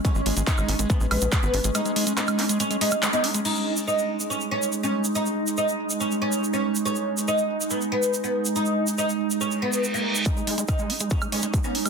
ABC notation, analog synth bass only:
X:1
M:4/4
L:1/16
Q:1/4=141
K:G#m
V:1 name="Analog synth bass" clef=bass
z G,,, G,,, G,,, z G,,, G,,, G,,, z A,,, A,,, A,,, z G,,, G,,, G,,, | z16 | z16 | z16 |
z16 | z16 | z16 |]